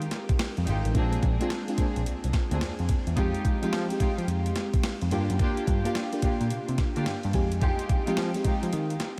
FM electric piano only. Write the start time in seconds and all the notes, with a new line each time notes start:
Already playing: G#3 C4 D#4 G4 A#4
0.95 G#3 C4 D4 F4
1.40 G#3 C4 D4 F4
1.68 G#3 C4 D4 F4
3.17 G#3 C4 D#4 G4
3.62 G#3 C4 D#4 G4
3.91 G#3 C4 D#4 G4
5.11 A#3 D4 F4 G4
5.85 A#3 D4 F4 G4
6.13 A#3 D4 F4 G4
7.07 F5
7.34 G#3 C4 D#4 G4 G#5
8.08 G#3 C4 D#4 G4
8.35 G#3 C4 D#4 G4